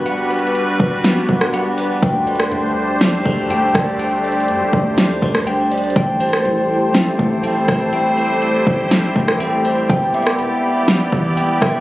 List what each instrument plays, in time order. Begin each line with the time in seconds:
Already playing: 808-style bass G1, clean electric guitar G3 B3 B4, analog synth pad G3 D4 F#4 B4, synth texture G3 F#4 B4
0.06 clean electric guitar F#5, closed hi-hat
0.30 clean electric guitar B4, closed hi-hat
0.39 closed hi-hat
0.47 closed hi-hat
0.55 closed hi-hat
0.80 808-style bass G1, kick
1.04 clean electric guitar B3, snare, closed hi-hat
1.29 808-style bass G1, clean electric guitar G3, kick
1.41 cross-stick
1.54 clean electric guitar F#5, closed hi-hat
1.78 clean electric guitar B4, closed hi-hat
2.02 808-style bass D2, analog synth pad A3 G4 C5, synth texture D4 C5, clean electric guitar G5, kick, closed hi-hat
2.27 clean electric guitar D5, closed hi-hat
2.35 closed hi-hat
2.40 cross-stick, closed hi-hat
2.52 808-style bass D2, closed hi-hat
3.01 clean electric guitar G3, snare, closed hi-hat
3.25 808-style bass D2, clean electric guitar D3, kick
3.50 808-style bass D2, clean electric guitar G5, closed hi-hat
3.75 808-style bass D2, clean electric guitar D5, kick, cross-stick, closed hi-hat
3.99 analog synth pad C5, clean electric guitar G5, closed hi-hat
4.24 clean electric guitar D5, closed hi-hat
4.32 closed hi-hat
4.40 closed hi-hat
4.48 808-style bass F#2, closed hi-hat
4.61 808-style bass D2
4.73 808-style bass D2, kick
4.98 clean electric guitar G3, snare, closed hi-hat
5.10 808-style bass E2
5.22 808-style bass D2, clean electric guitar D3, kick
5.35 cross-stick
5.47 clean electric guitar G5, closed hi-hat
5.71 clean electric guitar D5, closed hi-hat
5.78 closed hi-hat
5.84 closed hi-hat
5.90 closed hi-hat
5.96 808-style bass A1, analog synth pad A3 E4 G4 C5, synth texture C4 A4, clean electric guitar G5, kick, closed hi-hat
6.20 clean electric guitar C5, closed hi-hat
6.29 closed hi-hat
6.33 cross-stick, closed hi-hat
6.45 808-style bass A1, closed hi-hat
6.94 clean electric guitar C4, snare, closed hi-hat
7.19 808-style bass A1, clean electric guitar A3, kick
7.43 808-style bass A1, clean electric guitar G5, closed hi-hat
7.68 808-style bass A1, clean electric guitar C5, kick, cross-stick, closed hi-hat
7.93 analog synth pad G4, clean electric guitar G5, closed hi-hat
8.17 clean electric guitar C5, closed hi-hat
8.26 closed hi-hat
8.34 closed hi-hat
8.42 closed hi-hat
8.67 808-style bass A1, kick
8.91 clean electric guitar C4, snare, closed hi-hat
9.16 808-style bass A1, clean electric guitar A3, kick
9.28 cross-stick
9.40 clean electric guitar G5, closed hi-hat
9.65 clean electric guitar C5, closed hi-hat
9.90 808-style bass E1, synth texture G3 E4 D5, analog synth pad B3 E4 G4 D5, clean electric guitar G5, kick, closed hi-hat
10.14 clean electric guitar E5, closed hi-hat
10.22 closed hi-hat
10.27 cross-stick, closed hi-hat
10.39 808-style bass E1, closed hi-hat
10.88 clean electric guitar G3, snare, closed hi-hat
11.12 808-style bass E1, clean electric guitar E3, kick
11.37 808-style bass E1, clean electric guitar G5, closed hi-hat
11.61 808-style bass E1, clean electric guitar E5, kick, cross-stick, closed hi-hat